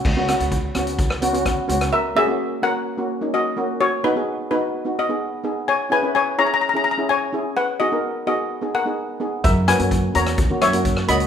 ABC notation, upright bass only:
X:1
M:4/4
L:1/16
Q:1/4=128
K:F#mix
V:1 name="Upright bass" clef=bass
C,,3 C,,3 C,,8 C,,2 | z16 | z16 | z16 |
z16 | F,,3 F,,3 E,,4 F,,4 C,,2 |]